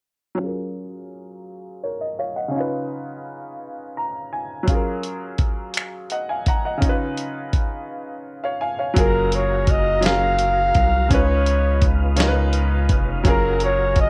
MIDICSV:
0, 0, Header, 1, 6, 480
1, 0, Start_track
1, 0, Key_signature, 6, "major"
1, 0, Tempo, 714286
1, 265, Time_signature, 6, 3, 24, 8
1, 9473, End_track
2, 0, Start_track
2, 0, Title_t, "Flugelhorn"
2, 0, Program_c, 0, 56
2, 6045, Note_on_c, 0, 70, 86
2, 6283, Note_on_c, 0, 73, 81
2, 6293, Note_off_c, 0, 70, 0
2, 6524, Note_on_c, 0, 75, 94
2, 6535, Note_off_c, 0, 73, 0
2, 6759, Note_on_c, 0, 77, 110
2, 6769, Note_off_c, 0, 75, 0
2, 7472, Note_off_c, 0, 77, 0
2, 7479, Note_on_c, 0, 73, 91
2, 7985, Note_off_c, 0, 73, 0
2, 8930, Note_on_c, 0, 70, 96
2, 9142, Note_off_c, 0, 70, 0
2, 9169, Note_on_c, 0, 73, 95
2, 9381, Note_off_c, 0, 73, 0
2, 9414, Note_on_c, 0, 75, 111
2, 9473, Note_off_c, 0, 75, 0
2, 9473, End_track
3, 0, Start_track
3, 0, Title_t, "Grand piano"
3, 0, Program_c, 1, 0
3, 233, Note_on_c, 1, 54, 53
3, 252, Note_on_c, 1, 61, 53
3, 271, Note_on_c, 1, 65, 49
3, 292, Note_on_c, 1, 68, 51
3, 311, Note_on_c, 1, 70, 65
3, 399, Control_c, 1, 64, 127
3, 994, Note_off_c, 1, 70, 0
3, 1233, Note_on_c, 1, 73, 49
3, 1239, Note_on_c, 1, 70, 40
3, 1343, Note_off_c, 1, 73, 0
3, 1346, Note_off_c, 1, 70, 0
3, 1351, Note_on_c, 1, 75, 51
3, 1462, Note_off_c, 1, 75, 0
3, 1471, Note_on_c, 1, 77, 55
3, 1474, Note_on_c, 1, 73, 49
3, 1582, Note_off_c, 1, 77, 0
3, 1584, Note_off_c, 1, 73, 0
3, 1587, Note_on_c, 1, 78, 50
3, 1590, Note_on_c, 1, 75, 37
3, 1662, Note_off_c, 1, 54, 0
3, 1668, Note_on_c, 1, 49, 58
3, 1672, Note_off_c, 1, 61, 0
3, 1681, Note_off_c, 1, 65, 0
3, 1688, Note_on_c, 1, 61, 52
3, 1692, Note_off_c, 1, 68, 0
3, 1709, Note_on_c, 1, 63, 50
3, 1713, Control_c, 1, 64, 0
3, 1728, Note_on_c, 1, 65, 57
3, 1749, Note_on_c, 1, 71, 63
3, 1814, Note_off_c, 1, 78, 0
3, 1816, Note_off_c, 1, 75, 0
3, 1852, Control_c, 1, 64, 127
3, 2668, Note_on_c, 1, 82, 53
3, 2890, Note_off_c, 1, 82, 0
3, 2907, Note_on_c, 1, 80, 56
3, 3099, Note_off_c, 1, 49, 0
3, 3110, Note_off_c, 1, 61, 0
3, 3111, Note_on_c, 1, 54, 63
3, 3120, Note_off_c, 1, 63, 0
3, 3129, Note_off_c, 1, 65, 0
3, 3129, Note_off_c, 1, 80, 0
3, 3130, Note_on_c, 1, 61, 57
3, 3140, Note_off_c, 1, 71, 0
3, 3150, Note_on_c, 1, 65, 54
3, 3152, Control_c, 1, 64, 0
3, 3167, Note_on_c, 1, 68, 52
3, 3189, Note_on_c, 1, 70, 64
3, 3290, Control_c, 1, 64, 127
3, 4111, Note_on_c, 1, 78, 51
3, 4114, Note_on_c, 1, 75, 41
3, 4222, Note_off_c, 1, 78, 0
3, 4223, Note_off_c, 1, 75, 0
3, 4229, Note_on_c, 1, 80, 58
3, 4236, Note_on_c, 1, 77, 48
3, 4341, Note_off_c, 1, 80, 0
3, 4345, Note_off_c, 1, 77, 0
3, 4356, Note_on_c, 1, 82, 62
3, 4357, Note_on_c, 1, 78, 50
3, 4460, Note_off_c, 1, 78, 0
3, 4465, Note_off_c, 1, 82, 0
3, 4470, Note_on_c, 1, 78, 46
3, 4476, Note_on_c, 1, 75, 41
3, 4541, Note_off_c, 1, 54, 0
3, 4550, Note_off_c, 1, 61, 0
3, 4553, Note_on_c, 1, 49, 60
3, 4560, Note_off_c, 1, 65, 0
3, 4569, Note_off_c, 1, 68, 0
3, 4572, Note_on_c, 1, 61, 52
3, 4580, Note_off_c, 1, 70, 0
3, 4589, Note_on_c, 1, 63, 57
3, 4594, Control_c, 1, 64, 0
3, 4612, Note_on_c, 1, 65, 54
3, 4632, Note_on_c, 1, 71, 69
3, 4696, Note_off_c, 1, 78, 0
3, 4699, Note_off_c, 1, 75, 0
3, 4699, Control_c, 1, 64, 127
3, 5670, Note_on_c, 1, 77, 55
3, 5677, Note_on_c, 1, 73, 48
3, 5781, Note_off_c, 1, 77, 0
3, 5785, Note_off_c, 1, 73, 0
3, 5786, Note_on_c, 1, 80, 59
3, 5792, Note_on_c, 1, 77, 52
3, 5896, Note_off_c, 1, 77, 0
3, 5899, Note_off_c, 1, 80, 0
3, 5906, Note_on_c, 1, 77, 51
3, 5911, Note_on_c, 1, 73, 41
3, 5982, Note_off_c, 1, 49, 0
3, 5991, Note_off_c, 1, 61, 0
3, 6000, Note_off_c, 1, 63, 0
3, 6006, Note_on_c, 1, 54, 77
3, 6012, Note_off_c, 1, 65, 0
3, 6016, Note_on_c, 1, 61, 70
3, 6021, Note_off_c, 1, 71, 0
3, 6026, Note_on_c, 1, 65, 73
3, 6033, Control_c, 1, 64, 0
3, 6036, Note_on_c, 1, 68, 75
3, 6047, Note_on_c, 1, 70, 81
3, 6134, Note_off_c, 1, 77, 0
3, 6136, Note_off_c, 1, 73, 0
3, 6143, Control_c, 1, 64, 127
3, 6452, Note_off_c, 1, 54, 0
3, 6457, Note_off_c, 1, 61, 0
3, 6462, Note_off_c, 1, 65, 0
3, 6467, Note_off_c, 1, 68, 0
3, 6472, Note_off_c, 1, 70, 0
3, 6726, Note_on_c, 1, 54, 71
3, 6735, Note_on_c, 1, 61, 64
3, 6745, Note_on_c, 1, 65, 64
3, 6756, Note_on_c, 1, 68, 66
3, 6763, Note_on_c, 1, 70, 76
3, 7172, Note_off_c, 1, 54, 0
3, 7176, Note_off_c, 1, 61, 0
3, 7181, Note_off_c, 1, 65, 0
3, 7187, Note_off_c, 1, 68, 0
3, 7191, Note_off_c, 1, 70, 0
3, 7450, Note_on_c, 1, 49, 73
3, 7462, Note_on_c, 1, 61, 75
3, 7469, Note_on_c, 1, 63, 69
3, 7472, Control_c, 1, 64, 0
3, 7479, Note_on_c, 1, 65, 77
3, 7489, Note_on_c, 1, 71, 85
3, 7605, Control_c, 1, 64, 127
3, 7894, Note_off_c, 1, 49, 0
3, 7900, Note_off_c, 1, 61, 0
3, 7904, Note_off_c, 1, 63, 0
3, 7909, Note_off_c, 1, 65, 0
3, 7913, Note_off_c, 1, 71, 0
3, 8171, Note_on_c, 1, 49, 83
3, 8179, Note_on_c, 1, 61, 82
3, 8189, Note_on_c, 1, 63, 78
3, 8198, Note_on_c, 1, 65, 78
3, 8208, Note_on_c, 1, 70, 70
3, 8240, Note_off_c, 1, 70, 0
3, 8253, Note_on_c, 1, 71, 93
3, 8614, Note_off_c, 1, 49, 0
3, 8618, Note_off_c, 1, 61, 0
3, 8623, Note_off_c, 1, 63, 0
3, 8628, Note_off_c, 1, 65, 0
3, 8655, Note_off_c, 1, 71, 0
3, 8894, Note_on_c, 1, 54, 81
3, 8905, Note_on_c, 1, 61, 76
3, 8913, Control_c, 1, 64, 0
3, 8915, Note_on_c, 1, 65, 80
3, 8922, Note_on_c, 1, 68, 81
3, 8935, Note_on_c, 1, 70, 87
3, 9036, Control_c, 1, 64, 127
3, 9336, Note_off_c, 1, 54, 0
3, 9341, Note_off_c, 1, 61, 0
3, 9346, Note_off_c, 1, 65, 0
3, 9350, Note_off_c, 1, 68, 0
3, 9356, Note_off_c, 1, 70, 0
3, 9473, End_track
4, 0, Start_track
4, 0, Title_t, "Tonewheel organ"
4, 0, Program_c, 2, 16
4, 6024, Note_on_c, 2, 54, 64
4, 6026, Note_on_c, 2, 65, 58
4, 6026, Note_on_c, 2, 70, 75
4, 7450, Note_off_c, 2, 54, 0
4, 7451, Note_off_c, 2, 70, 0
4, 7461, Note_on_c, 2, 63, 56
4, 7462, Note_on_c, 2, 49, 64
4, 7463, Note_on_c, 2, 59, 62
4, 8888, Note_off_c, 2, 63, 0
4, 8889, Note_off_c, 2, 49, 0
4, 8889, Note_off_c, 2, 59, 0
4, 8910, Note_on_c, 2, 54, 66
4, 8910, Note_on_c, 2, 70, 75
4, 9473, Note_off_c, 2, 54, 0
4, 9473, Note_off_c, 2, 65, 0
4, 9473, Note_off_c, 2, 70, 0
4, 9473, End_track
5, 0, Start_track
5, 0, Title_t, "Analog synth bass"
5, 0, Program_c, 3, 38
5, 6032, Note_on_c, 3, 30, 104
5, 7202, Note_off_c, 3, 30, 0
5, 7232, Note_on_c, 3, 36, 86
5, 7445, Note_off_c, 3, 36, 0
5, 7473, Note_on_c, 3, 37, 107
5, 8673, Note_on_c, 3, 29, 82
5, 8683, Note_off_c, 3, 37, 0
5, 8885, Note_off_c, 3, 29, 0
5, 8909, Note_on_c, 3, 30, 101
5, 9473, Note_off_c, 3, 30, 0
5, 9473, End_track
6, 0, Start_track
6, 0, Title_t, "Drums"
6, 3142, Note_on_c, 9, 36, 90
6, 3142, Note_on_c, 9, 42, 58
6, 3209, Note_off_c, 9, 36, 0
6, 3210, Note_off_c, 9, 42, 0
6, 3382, Note_on_c, 9, 42, 40
6, 3449, Note_off_c, 9, 42, 0
6, 3617, Note_on_c, 9, 42, 36
6, 3620, Note_on_c, 9, 36, 67
6, 3684, Note_off_c, 9, 42, 0
6, 3687, Note_off_c, 9, 36, 0
6, 3856, Note_on_c, 9, 42, 57
6, 3879, Note_on_c, 9, 26, 91
6, 3923, Note_off_c, 9, 42, 0
6, 3947, Note_off_c, 9, 26, 0
6, 4099, Note_on_c, 9, 42, 45
6, 4166, Note_off_c, 9, 42, 0
6, 4341, Note_on_c, 9, 42, 40
6, 4345, Note_on_c, 9, 36, 73
6, 4409, Note_off_c, 9, 42, 0
6, 4412, Note_off_c, 9, 36, 0
6, 4583, Note_on_c, 9, 36, 90
6, 4583, Note_on_c, 9, 42, 59
6, 4650, Note_off_c, 9, 36, 0
6, 4651, Note_off_c, 9, 42, 0
6, 4822, Note_on_c, 9, 42, 43
6, 4889, Note_off_c, 9, 42, 0
6, 5061, Note_on_c, 9, 42, 39
6, 5062, Note_on_c, 9, 36, 67
6, 5128, Note_off_c, 9, 42, 0
6, 5129, Note_off_c, 9, 36, 0
6, 6025, Note_on_c, 9, 36, 114
6, 6026, Note_on_c, 9, 42, 80
6, 6092, Note_off_c, 9, 36, 0
6, 6093, Note_off_c, 9, 42, 0
6, 6264, Note_on_c, 9, 42, 55
6, 6332, Note_off_c, 9, 42, 0
6, 6500, Note_on_c, 9, 42, 49
6, 6502, Note_on_c, 9, 36, 78
6, 6568, Note_off_c, 9, 42, 0
6, 6569, Note_off_c, 9, 36, 0
6, 6738, Note_on_c, 9, 42, 80
6, 6762, Note_on_c, 9, 38, 117
6, 6805, Note_off_c, 9, 42, 0
6, 6829, Note_off_c, 9, 38, 0
6, 6980, Note_on_c, 9, 42, 58
6, 7047, Note_off_c, 9, 42, 0
6, 7222, Note_on_c, 9, 42, 48
6, 7225, Note_on_c, 9, 36, 89
6, 7289, Note_off_c, 9, 42, 0
6, 7292, Note_off_c, 9, 36, 0
6, 7464, Note_on_c, 9, 36, 114
6, 7465, Note_on_c, 9, 42, 74
6, 7531, Note_off_c, 9, 36, 0
6, 7532, Note_off_c, 9, 42, 0
6, 7704, Note_on_c, 9, 42, 49
6, 7771, Note_off_c, 9, 42, 0
6, 7940, Note_on_c, 9, 42, 46
6, 7941, Note_on_c, 9, 36, 86
6, 8007, Note_off_c, 9, 42, 0
6, 8008, Note_off_c, 9, 36, 0
6, 8175, Note_on_c, 9, 42, 76
6, 8198, Note_on_c, 9, 38, 114
6, 8242, Note_off_c, 9, 42, 0
6, 8266, Note_off_c, 9, 38, 0
6, 8418, Note_on_c, 9, 42, 52
6, 8486, Note_off_c, 9, 42, 0
6, 8662, Note_on_c, 9, 42, 46
6, 8665, Note_on_c, 9, 36, 96
6, 8729, Note_off_c, 9, 42, 0
6, 8732, Note_off_c, 9, 36, 0
6, 8903, Note_on_c, 9, 36, 110
6, 8903, Note_on_c, 9, 42, 82
6, 8970, Note_off_c, 9, 36, 0
6, 8970, Note_off_c, 9, 42, 0
6, 9141, Note_on_c, 9, 42, 49
6, 9208, Note_off_c, 9, 42, 0
6, 9379, Note_on_c, 9, 42, 50
6, 9382, Note_on_c, 9, 36, 81
6, 9446, Note_off_c, 9, 42, 0
6, 9449, Note_off_c, 9, 36, 0
6, 9473, End_track
0, 0, End_of_file